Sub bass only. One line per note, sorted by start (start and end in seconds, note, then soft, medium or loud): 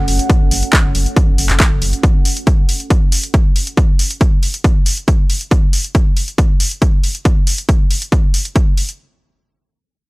0.08 0.19 F#1 loud
0.41 0.51 F#1 medium
0.51 0.62 F#1 loud
0.84 0.94 F#1 medium
0.95 1.06 F#1 medium
1.28 1.38 F#1 medium
1.38 1.49 F#1 loud
1.50 1.60 F#1 medium
1.71 1.81 F#1 medium
1.82 1.93 F#1 medium